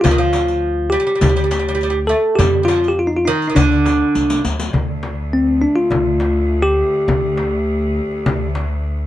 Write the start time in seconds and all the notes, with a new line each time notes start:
0.01 D2 F3 F4, riq, darbuka dum, frame drum
0.11 D#3
0.18 F3
0.33 riq, darbuka tek, frame drum
0.48 riq
0.90 G3 G4
1.00 G3
1.07 G3, darbuka ka
1.15 G3
1.21 D2 G3, riq, darbuka dum, frame drum
1.29 G3
1.36 G3, riq
1.44 G3
1.51 G3, riq, darbuka tek, frame drum
1.59 G3
1.69 G3
1.75 G3
1.81 G3, riq
1.90 G3
2.07 A3 A4
2.24 darbuka ka
2.35 F2 G3 G4, riq, darbuka dum
2.40 frame drum
2.63 G3 F4
2.68 F3, riq, darbuka tek, frame drum
2.83 riq, darbuka ka
2.88 G4
2.99 F4
3.07 D#4
3.13 darbuka ka
3.17 F4
3.25 D#3 D#4
3.42 riq
3.47 D#3 D#4
3.55 D2 D3 D4, riq, darbuka dum, frame drum
3.71 riq, darbuka ka
3.86 riq, darbuka tek, frame drum
4.01 darbuka ka
4.15 C2, riq
4.30 riq
4.44 D2, riq
4.59 riq, darbuka ka
4.73 D2, darbuka dum, frame drum
5.03 darbuka tek, frame drum
5.33 C4
5.61 D4, darbuka ka
5.76 F4, darbuka ka
5.91 D2, darbuka dum, frame drum
6.06 darbuka ka
6.20 darbuka tek, frame drum
6.62 G4
6.93 darbuka ka
7.08 D2, darbuka dum, frame drum
7.37 darbuka tek, frame drum
7.97 darbuka ka
8.11 darbuka ka
8.26 D2, darbuka dum, frame drum
8.41 darbuka ka
8.55 darbuka tek, frame drum